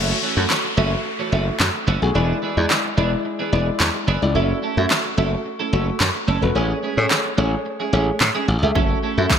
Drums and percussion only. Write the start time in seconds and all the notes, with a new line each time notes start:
0.50 snare, clap
1.60 snare, clap
2.70 snare, clap
3.80 snare, clap
4.90 snare, clap
6.00 snare, clap
7.11 snare, clap
8.20 snare, clap
8.76 kick
9.30 kick, snare, clap